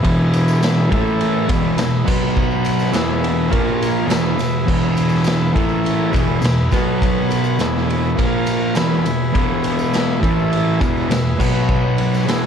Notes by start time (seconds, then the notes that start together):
Already playing: G#4 B4 E5
0.03 E2 B2 E3, kick, ride
0.33 ride, tambourine
0.48 tambourine
0.63 snare, ride, tambourine
0.89 A2 E3 A3 E4 A4, kick, ride
0.94 E5
1.07 tambourine
1.21 ride, tambourine
1.48 E2 B2 E3 G#4 B4 E5, kick, ride, tambourine
1.64 tambourine
1.78 E2 B2, snare, ride, tambourine
2.05 B2 F#3 B3 F#4 B4 F#5, kick, tambourine, crash
2.37 kick, tambourine
2.51 tambourine
2.65 ride, tambourine
2.79 snare, tambourine
2.92 E2 B2 E3 G#4 B4 E5, snare, ride, tambourine
3.08 tambourine
3.24 ride, tambourine
3.49 A#2 F3 A#3 F4 A#4 F5, kick, ride, tambourine
3.67 tambourine
3.82 ride, tambourine
3.96 tambourine
4.06 E2 B2 E3 G#4 B4 E5, ride, tambourine
4.11 snare
4.26 tambourine
4.36 E2 B2, tambourine
4.40 snare, ride
4.53 tambourine
4.66 E2 B2 E3, kick, crash
4.97 ride, tambourine
5.09 tambourine
5.14 snare
5.24 snare, ride, tambourine
5.54 A2 E3 A3 E4 A4 E5, kick, ride
5.69 tambourine
5.84 ride, tambourine
6.11 E2 B2 E3 G#4 B4 E5, kick, tambourine
6.16 ride
6.27 tambourine
6.41 E2 B2, ride, tambourine
6.46 snare
6.72 B2 F#3 B3 F#4 B4 F#5, kick, snare, ride, tambourine
7.02 kick, ride
7.31 ride, tambourine
7.44 tambourine
7.58 E2 B2 E3 G#4 B4 E5, snare, ride, tambourine
7.90 ride
8.03 tambourine
8.16 A#2 F3 A#3 F4 A#4 F5, kick, ride, tambourine
8.46 ride, tambourine
8.61 tambourine
8.75 E2 B2 E3 G#4 B4 E5, snare, ride, tambourine
9.04 E2 B2, ride, tambourine
9.33 E2 B2 E3, kick, ride
9.64 ride, tambourine
9.79 tambourine
9.94 snare, ride, tambourine
10.20 A2 E3 A3 E4 A4 E5, kick, ride
10.39 tambourine
10.53 ride, tambourine
10.80 E2 B2 E3 G#4 B4 E5, kick, ride, tambourine
10.97 tambourine
11.09 E2 B2, snare, ride, tambourine
11.39 B2 F#3 B3 F#4 B4 F#5, kick, snare, tambourine, crash
11.69 kick, tambourine
11.98 ride
12.14 snare, tambourine
12.24 E2 G#4 B4
12.28 B2 E3 E5, snare, ride, tambourine